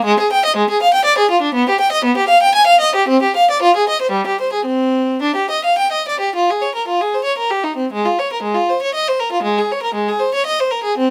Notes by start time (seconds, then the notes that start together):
0.04 G#3
0.20 G#4
0.32 G5
0.45 D#5
0.56 G#3
0.70 G#4
0.82 F5
0.94 G5
1.05 D5
1.18 G#4
1.31 F4
1.42 D4
1.54 B3
1.69 G4
1.80 G5
1.92 D#5
2.04 B3
2.17 G4
2.29 F5
2.42 G5
2.55 G#5
2.67 F5
2.80 D#5
2.95 G4
3.08 C4
3.22 G4
3.36 F5
3.51 D5
3.62 F4
3.76 G#4
3.89 D#5
4.02 C5
4.11 G3
4.27 G4
4.41 C5
4.53 G#4
4.65 C4
5.22 D4
5.36 G4
5.50 D#5
5.64 F5
5.78 G5
5.92 D#5
6.08 D5
6.20 G4
6.35 F4
6.50 G#4
6.61 C#5
6.75 A#4
6.88 F4
7.01 G#4
7.14 C5
7.24 C#5
7.38 A#4
7.51 G4
7.64 D#4
7.76 C4
7.93 G#3
8.05 F4
8.19 C#5
8.33 A#4
8.43 G#3
8.55 F4
8.69 C5
8.82 C#5
8.94 D#5
9.08 C5
9.19 A#4
9.32 F4
9.43 G#3
9.58 G#4
9.72 C#5
9.83 A#4
9.94 G#3
10.08 G#4
10.19 C5
10.34 C#5
10.46 D#5
10.60 C5
10.71 A#4
10.83 G#4
10.98 C4